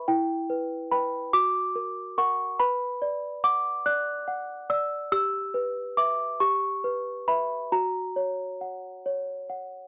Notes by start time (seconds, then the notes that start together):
Already playing: G5 E6
0.08 E4 G5
0.50 B4
0.92 B4 G5 B5
1.33 F#4 D6
1.75 A#4
2.18 A#4 F#5 C#6
2.60 B4 B5
3.02 D5
3.44 F#5 D6
3.86 D5 F#6
4.28 F#5
4.70 D5 E6
5.12 G4 E6
5.54 B4
5.97 B4 E5 D6
6.40 G4 C#6
6.84 B4
7.28 B4 E5 B5
7.72 F#4 A#5
8.16 C#5
8.61 F#5
9.06 C#5
9.50 F#5